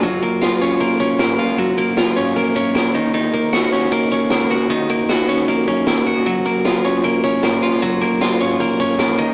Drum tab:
HH |xxxxxxxx|xxxxxxxx|xxxxxxxx|xxxxxxxx|
SD |--o---o-|--o---o-|--o---o-|--o---o-|
BD |oo--oo--|oo--oo-o|-o--oo--|oo--oo-o|

HH |xxxxxxxo|xxxxxxxo|
SD |--o---o-|--o---o-|
BD |oo--oo--|oo--oo-o|